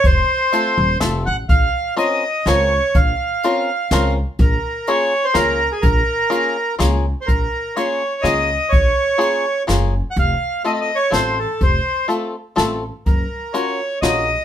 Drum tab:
HH |x-x-x-|x-x-x-|x-x-x-|x-x-x-|
SD |----o-|----o-|----o-|----o-|
BD |o-----|o-----|o-----|o-----|

HH |x-x-x-|x-x-x-|x-x-x-|x-x-x-|
SD |----o-|----o-|----o-|----o-|
BD |o-----|o-----|o-----|o-----|

HH |x-x-x-|x-x-x-|
SD |----o-|----o-|
BD |o-----|o-----|